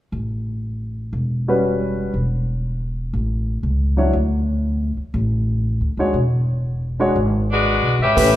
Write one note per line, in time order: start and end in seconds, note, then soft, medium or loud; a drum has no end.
0.12 1.09 A1 medium
1.13 2.09 E1 medium
1.48 2.11 G3 soft
1.48 2.11 C#4 medium
1.48 2.11 F#4 soft
1.48 2.12 B4 medium
2.14 3.10 E1 medium
3.13 3.61 A1 medium
3.63 4.11 C#2 medium
3.97 4.13 F#3 soft
3.97 4.13 D4 soft
3.97 4.13 E4 soft
3.97 4.13 C#5 medium
4.13 4.93 D2 medium
4.97 muted upright bass stroke soft
5.14 5.78 A1 medium
5.81 5.97 D2 medium
5.97 6.13 D#2 medium
5.97 6.14 G#3 medium
5.97 6.14 D4 soft
5.97 6.15 F#4 soft
5.97 6.15 C#5 medium
6.14 7.11 E1 medium
7.00 7.15 G#3 medium
7.00 7.15 D4 medium
7.00 7.15 F#4 medium
7.00 7.15 C#5 medium
7.16 7.79 G#1 medium
7.51 7.97 G#3 medium
7.51 7.97 D4 medium
7.51 7.97 F#4 medium
7.51 7.97 B4 medium
7.82 7.98 B1 medium
7.99 8.15 G#1 medium
7.99 8.36 C#4 medium
7.99 8.36 G4 medium
7.99 8.36 B4 medium
7.99 8.36 E5 loud
8.16 8.36 A1 medium
8.16 8.36 A3 medium
8.16 8.36 C#4 medium
8.16 8.36 G4 medium
8.16 8.36 B4 medium
8.16 kick soft
8.16 open hi-hat soft